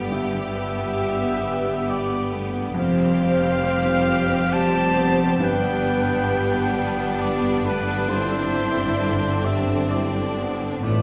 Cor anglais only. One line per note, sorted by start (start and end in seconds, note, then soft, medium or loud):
0.12 1.91 E5 medium
1.89 2.33 D5 medium
2.79 4.54 F5 loud
4.53 5.45 A5 loud
5.44 7.22 G5 loud
7.20 7.65 D5 medium
7.65 8.11 B4 medium
8.09 9.47 C5 loud
9.45 9.92 E5 medium
9.90 10.55 D5 medium
10.83 11.02 D5 medium